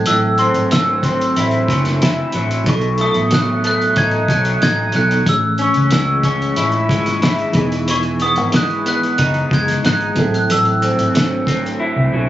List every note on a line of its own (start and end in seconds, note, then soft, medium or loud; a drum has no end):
0.00 0.75 E3 medium
0.00 2.29 F#3 medium
0.00 2.29 C4 medium
0.00 2.30 E4 medium
0.00 2.31 A4 medium
0.06 0.45 A1 medium
0.06 2.67 A2 medium
0.06 0.40 E6 medium
0.06 closed hi-hat loud
0.38 1.04 C4 medium
0.38 0.72 C6 medium
0.38 closed hi-hat medium
0.55 1.32 G#1 medium
0.55 closed hi-hat soft
0.71 1.70 F#3 medium
0.71 1.02 E6 medium
0.71 snare loud
0.71 closed hi-hat medium
1.03 2.74 C4 medium
1.03 2.30 C6 medium
1.03 kick medium
1.03 closed hi-hat medium
1.21 closed hi-hat soft
1.36 1.62 A1 medium
1.36 2.00 E4 medium
1.36 closed hi-hat medium
1.51 closed hi-hat soft
1.68 2.21 F#1 medium
1.68 2.34 F#3 medium
1.68 kick medium
1.68 closed hi-hat medium
1.85 snare soft
1.85 closed hi-hat soft
2.02 2.73 E4 medium
2.02 snare loud
2.02 closed hi-hat medium
2.32 2.60 A1 medium
2.32 3.32 F#3 medium
2.32 closed hi-hat medium
2.51 closed hi-hat soft
2.64 3.06 B1 medium
2.64 5.27 B2 medium
2.64 4.89 F#3 medium
2.64 4.90 B3 soft
2.64 4.91 D#4 soft
2.64 kick loud
2.64 closed hi-hat medium
2.69 2.74 G#4 soft
2.69 2.98 C#6 medium
2.76 4.94 A4 medium
2.81 closed hi-hat soft
2.98 3.64 A3 medium
2.98 3.34 D#6 medium
2.98 closed hi-hat medium
3.14 3.93 A1 medium
3.14 closed hi-hat soft
3.31 4.28 F#3 medium
3.31 3.63 F#6 medium
3.31 snare loud
3.31 closed hi-hat medium
3.64 5.59 A3 medium
3.64 3.99 F#6 medium
3.64 closed hi-hat medium
3.81 closed hi-hat soft
3.96 4.23 A1 medium
3.96 4.61 D#4 medium
3.96 4.31 G#6 loud
3.96 kick medium
3.96 closed hi-hat medium
4.11 closed hi-hat soft
4.28 4.55 B1 medium
4.28 4.92 F#3 medium
4.28 4.64 F#6 medium
4.28 kick medium
4.28 closed hi-hat medium
4.45 closed hi-hat soft
4.62 4.88 A1 medium
4.62 5.34 D#4 medium
4.62 4.93 G#6 loud
4.62 snare loud
4.62 closed hi-hat medium
4.92 5.20 B1 medium
4.92 5.27 F#3 soft
4.92 5.33 F#3 medium
4.92 5.27 B3 soft
4.92 5.27 D#4 soft
4.92 5.28 A4 medium
4.92 5.29 F#6 loud
4.92 closed hi-hat medium
5.11 closed hi-hat medium
5.24 5.66 A1 medium
5.24 7.50 E3 medium
5.24 7.51 A3 medium
5.24 7.52 C#4 soft
5.24 kick loud
5.24 closed hi-hat loud
5.29 7.52 G#4 medium
5.29 5.43 E6 loud
5.58 6.24 C#4 medium
5.58 5.94 C#6 medium
5.58 closed hi-hat medium
5.74 6.53 C#2 medium
5.74 closed hi-hat soft
5.91 6.89 G#3 medium
5.91 6.26 E6 medium
5.91 snare loud
5.91 closed hi-hat medium
6.23 7.62 C#4 medium
6.23 7.51 C#6 medium
6.23 kick medium
6.23 closed hi-hat medium
6.42 closed hi-hat soft
6.56 6.83 A1 medium
6.56 7.22 E4 medium
6.56 closed hi-hat medium
6.72 closed hi-hat soft
6.89 7.42 G#1 medium
6.89 8.53 G#3 medium
6.89 kick medium
6.89 closed hi-hat medium
7.06 snare soft
7.06 closed hi-hat soft
7.22 9.18 E4 medium
7.22 snare loud
7.22 closed hi-hat medium
7.39 closed hi-hat soft
7.52 8.37 E1 medium
7.52 10.11 E3 medium
7.52 7.88 E3 medium
7.52 10.12 B3 medium
7.52 10.13 D#4 medium
7.52 kick loud
7.52 closed hi-hat medium
7.57 10.13 G#4 medium
7.72 closed hi-hat medium
7.88 11.17 E3 medium
7.88 8.23 C#6 medium
7.88 closed hi-hat loud
8.03 closed hi-hat soft
8.20 8.85 B3 medium
8.20 8.55 D#6 medium
8.20 closed hi-hat medium
8.36 9.15 G#1 medium
8.36 closed hi-hat soft
8.52 9.51 G#3 medium
8.52 8.85 F#6 medium
8.52 snare loud
8.52 closed hi-hat medium
8.70 closed hi-hat soft
8.86 10.23 B3 medium
8.86 9.48 F#6 loud
8.86 closed hi-hat medium
9.03 closed hi-hat soft
9.18 9.45 F#1 medium
9.18 9.83 D#4 medium
9.18 kick medium
9.18 closed hi-hat medium
9.34 closed hi-hat soft
9.51 9.77 F#1 medium
9.51 10.24 G#3 medium
9.51 9.86 G#6 medium
9.51 kick loud
9.51 closed hi-hat medium
9.68 snare soft
9.68 closed hi-hat medium
9.84 10.10 G#1 medium
9.84 10.23 D#4 medium
9.84 10.31 F#6 medium
9.84 snare loud
9.84 closed hi-hat medium
10.01 closed hi-hat soft
10.14 10.43 A1 loud
10.14 10.49 A2 medium
10.14 12.29 F#3 medium
10.14 10.23 B3 soft
10.14 12.29 E4 medium
10.14 kick medium
10.14 closed hi-hat medium
10.19 12.29 C4 medium
10.19 12.29 A4 medium
10.34 10.51 F#6 medium
10.34 closed hi-hat medium
10.49 10.88 A1 medium
10.49 12.29 A2 medium
10.49 12.29 E6 loud
10.49 closed hi-hat loud
10.65 closed hi-hat soft
10.82 11.46 C4 medium
10.82 closed hi-hat medium
10.98 11.76 G#1 medium
10.98 closed hi-hat soft
11.14 12.13 F#3 medium
11.14 snare loud
11.14 closed hi-hat medium
11.47 12.29 C4 medium
11.47 kick medium
11.47 closed hi-hat medium
11.66 closed hi-hat soft
11.80 12.29 E4 medium
11.96 12.09 C2 medium
12.13 12.26 B1 medium
12.13 12.29 F#3 medium